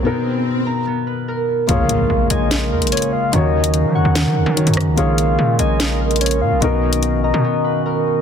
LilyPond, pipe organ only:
<<
  \new Staff \with { instrumentName = "Pipe organ" } { \time 4/4 \key bes \phrygian \tempo 4 = 146 r1 | <aes f'>1 | <ges ees'>1 | <aes f'>1 |
fis'1 | }
  \new Staff \with { instrumentName = "Pipe organ" } { \time 4/4 \key bes \phrygian << { r1 | bes1 | des'1~ | des'1 |
b1 | } \\ { r1 | des1~ | des1~ | des1 |
dis1 | } >> }
>>